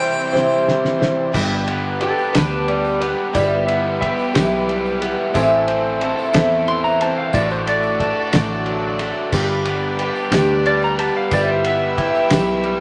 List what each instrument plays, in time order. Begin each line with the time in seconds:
Already playing: overdriven electric guitar C3 E3 G3 C4 E4, string section C4 E4 G4 C5, harmonica G5
0.00 steel-string acoustic guitar G3 C4 E4 C5
0.33 steel-string acoustic guitar C3 E3 G3 C4 E4 C5, snare
0.68 snare
0.85 snare
0.99 steel-string acoustic guitar G3 C4 E4 C5, snare
1.32 fingered electric bass G1, overdriven electric guitar G2, steel-string acoustic guitar G3 D4 G4 B4, string section B3 D4 G4 B4, kick, crash, tambourine
1.68 overdriven electric guitar B3, ride
2.00 steel-string acoustic guitar G3 D4 G4 B4, overdriven electric guitar G4, electric slide guitar A4, ride
2.18 tambourine
2.33 fingered electric bass D2, steel-string acoustic guitar G3 D4 G4 B4, overdriven electric guitar D4, electric slide guitar B4, snare, ride, tambourine
2.68 overdriven electric guitar G3, electric slide guitar D5, ride
2.85 tambourine
3.00 overdriven electric guitar B3, steel-string acoustic guitar D4 G4 B4, electric slide guitar B4, ride
3.33 fingered electric bass G1, steel-string acoustic guitar G3 E4 G4 B4, overdriven electric guitar G3, string section B3 E4 G4 B4, electric slide guitar D5, kick, ride, tambourine
3.67 overdriven electric guitar B3, electric slide guitar E5, ride
4.01 steel-string acoustic guitar G3 E4 G4 B4, overdriven electric guitar G4, electric slide guitar E5, kick, ride
4.19 tambourine
4.33 fingered electric bass B1, steel-string acoustic guitar G3 E4 G4 B4, overdriven electric guitar E4, snare, ride, tambourine
4.68 overdriven electric guitar G3, ride
4.86 tambourine
5.00 overdriven electric guitar B3, steel-string acoustic guitar E4 G4 B4, ride
5.33 fingered electric bass A1, steel-string acoustic guitar A2 E3 A3 C4 E4 A4, overdriven electric guitar A2, string section C4 E4 A4 C5, kick, ride, tambourine
5.67 overdriven electric guitar C4, ride
6.01 steel-string acoustic guitar A3 C4 E4 A4, overdriven electric guitar A4, ride
6.18 tambourine
6.33 fingered electric bass E2, steel-string acoustic guitar A2 E3 A3 C4 E4 A4, overdriven electric guitar E4, snare, ride, tambourine
6.67 overdriven electric guitar E3, electric slide guitar C6, ride
6.84 electric slide guitar A#5, tambourine
7.00 steel-string acoustic guitar A3 C4 E4 A4, overdriven electric guitar C4, electric slide guitar A5, ride
7.18 electric slide guitar F5
7.33 fingered electric bass A1, steel-string acoustic guitar A2 D3 A3 D4 F#4 A4, overdriven electric guitar A2, string section D4 F#4 A4 D5, electric slide guitar D5, kick, ride, tambourine
7.50 electric slide guitar C5, tambourine
7.66 overdriven electric guitar A3, electric slide guitar D5, ride
7.83 tambourine
8.00 steel-string acoustic guitar A3 D4 F#4 A4, overdriven electric guitar A4, kick, ride
8.32 fingered electric bass A1, steel-string acoustic guitar A2 D3 A3 D4 F#4 A4, overdriven electric guitar D4, snare, ride, tambourine
8.66 overdriven electric guitar F#3, ride
8.99 overdriven electric guitar A3, steel-string acoustic guitar A3 D4 F#4 A4, ride
9.32 fingered electric bass G1, overdriven electric guitar G2, steel-string acoustic guitar G3 D4 G4 B4, string section D4 G4 B4 D5, kick, tambourine, crash
9.65 overdriven electric guitar B3, ride
9.99 steel-string acoustic guitar G3 D4 G4 B4, overdriven electric guitar G4, ride
10.16 tambourine
10.31 fingered electric bass D2, steel-string acoustic guitar G3 D4 G4 B4, overdriven electric guitar D4, snare, ride, tambourine
10.66 overdriven electric guitar G3, electric slide guitar D5, ride
10.82 electric slide guitar A#5, tambourine
10.98 overdriven electric guitar B3, steel-string acoustic guitar D4 G4 B4, electric slide guitar A5, ride
11.17 electric slide guitar F5
11.31 fingered electric bass G1, overdriven electric guitar G3, steel-string acoustic guitar G3 E4 G4 B4, string section E4 G4 B4 E5, electric slide guitar D5, kick, ride, tambourine
11.49 electric slide guitar C5
11.64 overdriven electric guitar B3, electric slide guitar E5, ride
11.97 steel-string acoustic guitar G3 E4 G4 B4, overdriven electric guitar G4, kick, ride
12.15 tambourine
12.30 fingered electric bass B1, steel-string acoustic guitar G3 E4 G4 B4, overdriven electric guitar E4, snare, ride, tambourine
12.64 overdriven electric guitar G3, ride